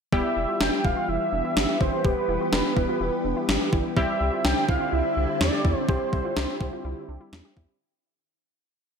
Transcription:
0.12 analog synth bass E1, string machine E3 B3 G4, analog polysynth G3 B3 E4 G4, synth pluck G4, analog synth lead E5, kick
0.37 analog synth bass E1, synth pluck E4
0.49 synth pluck F4
0.60 analog synth bass E1, synth pluck G4, analog synth lead G5, snare
0.84 analog synth bass E1, synth pluck E4, analog synth lead F5, kick
0.96 synth pluck F4
1.08 analog synth bass E1, synth pluck E4, analog synth lead E5
1.32 analog synth bass E1, synth pluck D4
1.45 synth pluck E4
1.56 analog synth bass G1, snare
1.69 synth pluck G4
1.81 analog synth bass G1, synth pluck E4, analog synth lead C5, kick
2.05 analog synth bass E1, synth pluck G4, analog synth lead B4, kick
2.28 analog synth bass E1, synth pluck E4
2.41 synth pluck F4
2.53 analog synth bass E1, synth pluck G4, analog synth lead B4, snare
2.77 analog synth bass E1, synth pluck E4, kick
2.89 synth pluck F4
3.01 analog synth bass E1, synth pluck E4
3.25 analog synth bass E1, synth pluck D4
3.37 synth pluck E4
3.49 analog synth bass G1, snare
3.61 synth pluck G4
3.73 analog synth bass G1, synth pluck E4, kick
3.96 analog synth bass C2, string machine D3 C4 E4, analog polysynth G3 C4 E4 G4, synth pluck G4, analog synth lead E5, kick
4.20 analog synth bass C2, synth pluck E4
4.32 synth pluck F4
4.44 analog synth bass C2, synth pluck G4, analog synth lead G5, snare
4.69 analog synth bass C2, synth pluck E4, analog synth lead F5, kick
4.81 synth pluck F4
4.93 analog synth bass C2, synth pluck E4, analog synth lead E5
5.17 analog synth bass C2, synth pluck D4
5.29 synth pluck E4
5.41 analog synth bass E2, analog synth lead D5, snare
5.53 synth pluck G4
5.64 analog synth bass E2, synth pluck E4, kick
5.89 analog synth bass C2, synth pluck G4, analog synth lead C5, kick
6.13 analog synth bass C2, synth pluck E4, kick
6.25 synth pluck F4
6.37 analog synth bass C2, synth pluck G4, snare
6.61 analog synth bass C2, synth pluck E4, kick
6.73 synth pluck F4
6.85 analog synth bass C2, synth pluck E4
7.09 analog synth bass C2, synth pluck D4
7.20 synth pluck E4
7.33 analog synth bass E2, snare
7.45 synth pluck G4
7.56 analog synth bass E2, synth pluck E4, kick

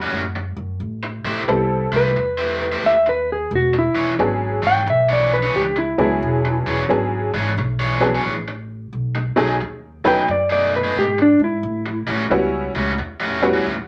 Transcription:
0.02 overdriven electric guitar A2 G3 C#4 F#4
0.13 upright bass F#2
0.36 muted overdriven electric guitar stroke
0.57 upright bass F#2
0.80 upright bass A1
1.03 muted overdriven electric guitar stroke
1.24 upright bass A1, overdriven electric guitar A3 E4 G4 C5
1.48 upright bass C2, honky-tonk piano G3 B3 C4 E4 A4, muted overdriven electric guitar stroke
1.92 upright bass C2, overdriven electric guitar A3 E4 G4 C5
1.96 electric slide guitar B4
2.16 upright bass E2, muted overdriven electric guitar stroke
2.38 overdriven electric guitar A3 E4 G4 C5
2.72 overdriven electric guitar A3 E4 G4 C5
2.83 upright bass D#2, electric slide guitar E5
3.06 electric slide guitar B4, muted overdriven electric guitar stroke
3.32 electric slide guitar G#4
3.51 upright bass E1
3.55 electric slide guitar F#4
3.74 muted overdriven electric guitar stroke
3.79 electric slide guitar E4
3.95 upright bass E1, overdriven electric guitar E3 D4 G#4 C#5
4.19 upright bass G#1, honky-tonk piano F#3 B3 C#4 D4 G#4, muted overdriven electric guitar stroke
4.62 upright bass G#1, overdriven electric guitar E3 D4 G#4 C#5
4.67 electric slide guitar G5
4.87 upright bass B1, electric slide guitar E5, muted overdriven electric guitar stroke
5.09 overdriven electric guitar E3 D4 G#4 C#5, electric slide guitar D5
5.34 electric slide guitar B4
5.43 overdriven electric guitar E3 D4 G#4 C#5
5.55 upright bass C#2, electric slide guitar G4
5.76 electric slide guitar E4, muted overdriven electric guitar stroke
5.98 upright bass C#2, honky-tonk piano F#3 B3 C#4 D4 G#4, electric slide guitar E4
6.22 upright bass E1
6.45 muted overdriven electric guitar stroke
6.66 upright bass E1, overdriven electric guitar E3 D4 G#4 C#5
6.89 upright bass G#1, honky-tonk piano F#3 B3 C#4 D4 G#4, muted overdriven electric guitar stroke
7.34 upright bass G#1, overdriven electric guitar E3 D4 G#4 C#5
7.57 upright bass B1, muted overdriven electric guitar stroke
7.80 overdriven electric guitar E3 D4 G#4 C#5
8.00 honky-tonk piano F#3 B3 C#4 D4 G#4
8.15 overdriven electric guitar E3 D4 G#4 C#5
8.25 upright bass A1
8.48 muted overdriven electric guitar stroke
8.93 upright bass B1
9.15 muted overdriven electric guitar stroke
9.36 upright bass B1, overdriven electric guitar B2 A3 D#4 G#4, honky-tonk piano F#3 A3 C#4 D#4 G#4
9.61 upright bass D#2, muted overdriven electric guitar stroke
10.04 upright bass D#2, overdriven electric guitar B2 A3 D#4 G#4, honky-tonk piano F#3 A3 C#4 D#4 B4, electric slide guitar G5
10.28 upright bass F#2, electric slide guitar D5, muted overdriven electric guitar stroke
10.50 overdriven electric guitar B2 A3 D#4 G#4, electric slide guitar D5
10.76 electric slide guitar B4
10.84 overdriven electric guitar B2 A3 D#4 G#4
10.96 upright bass G#2, electric slide guitar G4
11.19 electric slide guitar D4, muted overdriven electric guitar stroke
11.39 upright bass G#2
11.44 electric slide guitar E4
11.63 upright bass A1
11.86 muted overdriven electric guitar stroke
12.07 upright bass A1, overdriven electric guitar A2 G3 C#4 F#4
12.30 upright bass C#2, honky-tonk piano G3 B3 C#4 E4 F#4, muted overdriven electric guitar stroke
12.74 upright bass C#2, overdriven electric guitar A2 G3 C#4 F#4
12.98 upright bass E2, muted overdriven electric guitar stroke
13.20 overdriven electric guitar A2 G3 C#4 F#4
13.42 honky-tonk piano G3 B3 C#4 E4 F#4
13.53 overdriven electric guitar A2 G3 C#4 F#4
13.66 upright bass D#2

